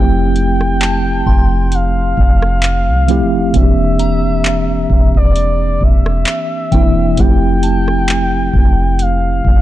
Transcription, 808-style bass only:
0.00 1.23 F1 loud
1.26 2.14 F1 loud
2.17 2.89 F1 loud
2.88 3.22 C2 loud
3.21 3.52 F1 loud
3.54 4.86 E1 loud
4.90 5.14 E1 loud
5.15 5.79 E1 loud
5.81 6.25 E1 loud
6.72 7.16 E1 medium
7.18 8.50 F1 loud
8.54 9.41 F1 loud
9.45 9.62 F1 loud

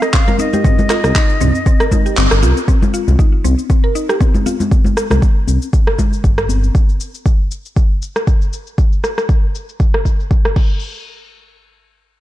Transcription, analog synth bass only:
1.04 1.12 C2 loud
1.41 1.51 C2 medium
2.17 2.28 G1 loud
2.31 2.44 G1 loud
2.43 2.53 C2 loud
3.08 3.16 C2 loud
3.44 3.55 C2 medium
5.11 5.19 C2 medium
5.48 5.58 C2 medium
6.24 6.70 G1 medium

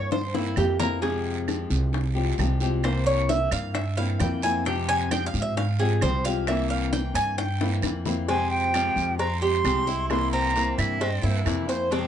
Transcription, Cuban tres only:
0.00 0.11 C#5 loud
0.12 0.34 C5 medium
0.35 0.57 E4 medium
0.57 0.79 G4 medium
0.80 1.02 A#4 loud
1.02 2.35 G#4 medium
2.84 3.06 C5 medium
3.06 3.29 C#5 medium
3.29 3.51 E5 medium
3.52 3.74 F5 loud
3.75 3.97 E5 medium
3.97 4.20 F5 loud
4.20 4.42 G5 medium
4.43 4.65 G#5 loud
4.66 4.88 G5 medium
4.89 5.11 G#5 loud
5.11 5.26 G5 loud
5.26 5.41 F5 medium
5.42 5.56 E5 medium
5.57 5.79 F5 medium
5.80 6.01 G#4 medium
6.02 6.24 C5 medium
6.25 6.47 F5 loud
6.48 6.70 E5 medium
6.70 6.92 F5 loud
6.93 7.15 G5 loud
7.15 7.37 G#5 loud
7.38 8.14 G5 medium
8.29 8.73 C4 medium
8.74 9.18 F4 medium
9.19 9.42 C4 medium
9.42 9.86 G4 medium
9.87 10.32 E4 medium
10.33 10.77 C4 loud
10.78 11.01 E4 medium
11.01 11.23 C4 medium
11.23 11.68 E4 medium
11.69 11.91 C5 medium
11.92 12.07 C4 medium

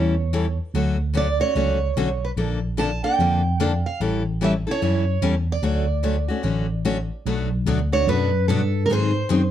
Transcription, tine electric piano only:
0.00 0.58 E2 medium
0.74 1.39 D2 medium
1.55 1.90 C#2 medium
1.96 2.31 B1 medium
2.37 3.02 A#1 medium
3.19 3.84 F2 medium
4.00 4.66 A1 medium
4.82 5.17 F#2 medium
5.22 5.57 E2 medium
5.62 6.28 D2 medium
6.44 7.09 A1 medium
7.26 7.65 B1 medium
7.66 8.06 D2 medium
8.07 8.47 F#2 medium
8.48 8.88 G2 medium
8.89 9.13 G#2 medium
9.15 9.22 G#2 soft
9.30 9.51 F#2 medium

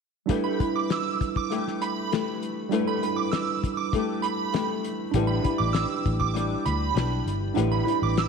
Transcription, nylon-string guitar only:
0.28 0.59 G3 medium
0.28 0.59 A3 medium
0.28 0.60 E4 medium
0.28 0.59 G4 medium
0.28 0.57 B4 medium
0.58 1.51 E4 soft
0.58 1.52 G4 soft
0.58 1.52 B4 soft
1.50 2.11 A3 medium
1.50 2.13 E4 medium
1.50 2.13 G4 medium
1.50 2.14 B4 medium
2.12 2.71 A3 soft
2.12 2.72 E4 medium
2.12 2.72 G4 medium
2.12 2.73 B4 medium
2.71 3.02 G3 medium
2.71 3.02 A3 medium
2.71 3.02 E4 medium
2.71 3.02 G4 medium
2.71 3.02 B4 medium
3.03 3.94 E4 soft
3.03 3.95 G4 soft
3.03 3.96 B4 medium
3.94 4.52 A3 medium
3.94 4.53 E4 medium
3.94 4.55 G4 medium
3.94 4.55 B4 medium
4.53 5.14 A3 medium
4.53 5.15 E4 medium
4.53 5.16 G4 medium
4.53 5.16 B4 medium
5.14 5.44 A2 medium
5.14 5.45 D3 medium
5.14 5.45 G3 medium
5.14 5.45 D4 medium
5.14 5.44 E4 medium
5.14 5.42 B4 medium
5.44 6.33 G3 soft
5.44 6.34 D4 soft
5.44 6.35 E4 soft
5.44 6.36 B4 soft
6.34 6.94 G3 medium
6.34 6.95 D4 medium
6.34 6.96 E4 medium
6.34 6.97 B4 medium
6.94 7.55 G3 medium
6.94 7.56 D4 medium
6.94 7.56 E4 medium
6.94 7.56 B4 medium
7.55 7.86 A2 medium
7.55 7.87 D3 medium
7.55 7.86 G3 medium
7.55 7.86 D4 medium
7.55 7.85 E4 medium
7.55 7.84 B4 medium
7.85 8.28 G3 soft
7.85 8.28 D4 soft
7.85 8.28 E4 soft
7.85 8.28 B4 medium

